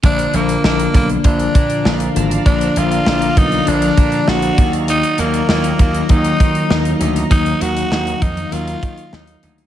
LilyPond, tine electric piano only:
\new Staff \with { instrumentName = "Tine electric piano" } { \clef bass \time 4/4 \key bes \phrygian \tempo 4 = 99 <d f bes d'>8 <d f bes d'>8 <d f bes d'>8 <d f bes d'>8 <d f bes d'>8 <d f bes d'>8 <d f bes d'>8 <d f bes f'>8 | <d f bes d'>8 <d f bes d'>8 <d f bes d'>8 <d f bes f'>8 <d f bes d'>8 <d f bes d'>8 <d f bes d'>8 <ees bes>8~ | <ees bes>8 <ees ges bes ees'>8 <ees ges bes f'>8 <ees ges bes ees'>8 <ees ges bes ees'>8 <ees ges bes ees'>8 <ees ges bes ees'>8 <ees ges bes ees'>8 | <ees ges bes ees'>8 <ees ges bes ees'>8 <ees ges bes ees'>8 <ees ges bes ees'>8 <ees ges bes ees'>8 <ges ees'>8 <ees ges bes f'>8 <ees ges bes ees'>8 | }